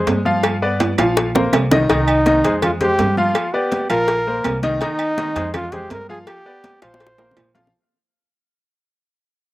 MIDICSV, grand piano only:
0, 0, Header, 1, 2, 480
1, 0, Start_track
1, 0, Key_signature, -3, "minor"
1, 0, Tempo, 364964
1, 573, Time_signature, 4, 2, 24, 8
1, 12543, End_track
2, 0, Start_track
2, 0, Title_t, "Grand piano"
2, 0, Program_c, 0, 0
2, 0, Note_on_c, 0, 56, 80
2, 0, Note_on_c, 0, 68, 86
2, 0, Note_on_c, 0, 72, 87
2, 247, Note_off_c, 0, 56, 0
2, 251, Note_off_c, 0, 68, 0
2, 252, Note_off_c, 0, 72, 0
2, 333, Note_on_c, 0, 53, 95
2, 337, Note_on_c, 0, 65, 94
2, 342, Note_on_c, 0, 77, 92
2, 726, Note_off_c, 0, 53, 0
2, 728, Note_off_c, 0, 65, 0
2, 731, Note_off_c, 0, 77, 0
2, 817, Note_on_c, 0, 59, 83
2, 820, Note_on_c, 0, 71, 90
2, 821, Note_on_c, 0, 74, 87
2, 1209, Note_off_c, 0, 59, 0
2, 1210, Note_off_c, 0, 71, 0
2, 1211, Note_off_c, 0, 74, 0
2, 1295, Note_on_c, 0, 53, 89
2, 1297, Note_on_c, 0, 65, 93
2, 1301, Note_on_c, 0, 77, 93
2, 1687, Note_off_c, 0, 53, 0
2, 1688, Note_off_c, 0, 65, 0
2, 1691, Note_off_c, 0, 77, 0
2, 1774, Note_on_c, 0, 58, 86
2, 1781, Note_on_c, 0, 70, 85
2, 1784, Note_on_c, 0, 72, 82
2, 2166, Note_off_c, 0, 58, 0
2, 2170, Note_off_c, 0, 70, 0
2, 2172, Note_off_c, 0, 72, 0
2, 2257, Note_on_c, 0, 51, 93
2, 2260, Note_on_c, 0, 63, 91
2, 2263, Note_on_c, 0, 75, 99
2, 2451, Note_off_c, 0, 51, 0
2, 2453, Note_off_c, 0, 63, 0
2, 2455, Note_off_c, 0, 75, 0
2, 2494, Note_on_c, 0, 51, 89
2, 2498, Note_on_c, 0, 63, 89
2, 2501, Note_on_c, 0, 75, 92
2, 2886, Note_off_c, 0, 51, 0
2, 2889, Note_off_c, 0, 63, 0
2, 2890, Note_off_c, 0, 75, 0
2, 2973, Note_on_c, 0, 51, 88
2, 2977, Note_on_c, 0, 63, 88
2, 2979, Note_on_c, 0, 75, 83
2, 3169, Note_off_c, 0, 51, 0
2, 3171, Note_off_c, 0, 63, 0
2, 3172, Note_off_c, 0, 75, 0
2, 3215, Note_on_c, 0, 56, 80
2, 3218, Note_on_c, 0, 68, 80
2, 3224, Note_on_c, 0, 72, 79
2, 3607, Note_off_c, 0, 56, 0
2, 3608, Note_off_c, 0, 68, 0
2, 3612, Note_off_c, 0, 72, 0
2, 3692, Note_on_c, 0, 56, 88
2, 3698, Note_on_c, 0, 67, 82
2, 3702, Note_on_c, 0, 72, 85
2, 4085, Note_off_c, 0, 56, 0
2, 4088, Note_off_c, 0, 67, 0
2, 4091, Note_off_c, 0, 72, 0
2, 4173, Note_on_c, 0, 53, 97
2, 4180, Note_on_c, 0, 65, 96
2, 4184, Note_on_c, 0, 77, 100
2, 4565, Note_off_c, 0, 53, 0
2, 4569, Note_off_c, 0, 65, 0
2, 4571, Note_off_c, 0, 77, 0
2, 4652, Note_on_c, 0, 59, 89
2, 4653, Note_on_c, 0, 71, 86
2, 4657, Note_on_c, 0, 74, 89
2, 5044, Note_off_c, 0, 59, 0
2, 5045, Note_off_c, 0, 71, 0
2, 5047, Note_off_c, 0, 74, 0
2, 5128, Note_on_c, 0, 53, 97
2, 5130, Note_on_c, 0, 65, 92
2, 5133, Note_on_c, 0, 77, 99
2, 5522, Note_off_c, 0, 53, 0
2, 5523, Note_off_c, 0, 65, 0
2, 5525, Note_off_c, 0, 77, 0
2, 5619, Note_on_c, 0, 70, 87
2, 5620, Note_on_c, 0, 58, 83
2, 5625, Note_on_c, 0, 72, 83
2, 6008, Note_off_c, 0, 70, 0
2, 6009, Note_off_c, 0, 58, 0
2, 6012, Note_off_c, 0, 72, 0
2, 6091, Note_on_c, 0, 51, 101
2, 6095, Note_on_c, 0, 63, 99
2, 6099, Note_on_c, 0, 75, 99
2, 6287, Note_off_c, 0, 51, 0
2, 6289, Note_off_c, 0, 63, 0
2, 6292, Note_off_c, 0, 75, 0
2, 6332, Note_on_c, 0, 51, 90
2, 6335, Note_on_c, 0, 63, 95
2, 6341, Note_on_c, 0, 75, 88
2, 6724, Note_off_c, 0, 51, 0
2, 6726, Note_off_c, 0, 63, 0
2, 6729, Note_off_c, 0, 75, 0
2, 6811, Note_on_c, 0, 51, 91
2, 6815, Note_on_c, 0, 63, 86
2, 6821, Note_on_c, 0, 75, 89
2, 7007, Note_off_c, 0, 51, 0
2, 7009, Note_off_c, 0, 63, 0
2, 7013, Note_off_c, 0, 75, 0
2, 7049, Note_on_c, 0, 56, 84
2, 7055, Note_on_c, 0, 68, 80
2, 7059, Note_on_c, 0, 72, 81
2, 7442, Note_off_c, 0, 56, 0
2, 7446, Note_off_c, 0, 68, 0
2, 7448, Note_off_c, 0, 72, 0
2, 7533, Note_on_c, 0, 56, 81
2, 7536, Note_on_c, 0, 68, 83
2, 7540, Note_on_c, 0, 72, 83
2, 7925, Note_off_c, 0, 56, 0
2, 7927, Note_off_c, 0, 68, 0
2, 7929, Note_off_c, 0, 72, 0
2, 8010, Note_on_c, 0, 53, 97
2, 8015, Note_on_c, 0, 65, 95
2, 8018, Note_on_c, 0, 77, 102
2, 8403, Note_off_c, 0, 53, 0
2, 8406, Note_off_c, 0, 65, 0
2, 8408, Note_off_c, 0, 77, 0
2, 8489, Note_on_c, 0, 59, 88
2, 8494, Note_on_c, 0, 71, 88
2, 8498, Note_on_c, 0, 74, 90
2, 8882, Note_off_c, 0, 59, 0
2, 8886, Note_off_c, 0, 71, 0
2, 8888, Note_off_c, 0, 74, 0
2, 8965, Note_on_c, 0, 53, 92
2, 8970, Note_on_c, 0, 65, 94
2, 8974, Note_on_c, 0, 77, 98
2, 9361, Note_off_c, 0, 53, 0
2, 9364, Note_off_c, 0, 65, 0
2, 9366, Note_off_c, 0, 77, 0
2, 9446, Note_on_c, 0, 58, 84
2, 9446, Note_on_c, 0, 70, 83
2, 9452, Note_on_c, 0, 72, 82
2, 9841, Note_off_c, 0, 58, 0
2, 9841, Note_off_c, 0, 70, 0
2, 9845, Note_off_c, 0, 72, 0
2, 9924, Note_on_c, 0, 53, 96
2, 9924, Note_on_c, 0, 65, 99
2, 9928, Note_on_c, 0, 77, 95
2, 10123, Note_off_c, 0, 53, 0
2, 10123, Note_off_c, 0, 65, 0
2, 10125, Note_off_c, 0, 77, 0
2, 12543, End_track
0, 0, End_of_file